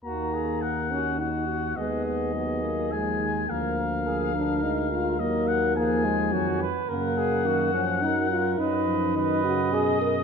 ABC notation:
X:1
M:3/4
L:1/8
Q:1/4=106
K:Ebm
V:1 name="Trumpet"
b2 g2 g2 | e e3 a2 | f6 | e g a3 z |
[K:F#] f6 | d2 d4 |]
V:2 name="Flugelhorn"
G A B G G2 | A2 A4 | B B A B3 | B2 A2 G c |
[K:F#] A G F z A2 | B2 B2 d2 |]
V:3 name="French horn"
B,3 D E G | C2 C B, A,2 | B,3 =D E F | B,2 B, A, G, z |
[K:F#] A,3 C D E | D3 F G A |]
V:4 name="Trombone" clef=bass
E,6 | A,2 G,2 F, E, | F,2 F,2 A,2 | G,2 F,2 E, z |
[K:F#] C,2 D, E, F,2 | F, E, D, C, B,,2 |]
V:5 name="Bass trombone" clef=bass
E,,6 | E,,6 | =D,,6 | E,,4 F,, z |
[K:F#] F,,6 | F,,6 |]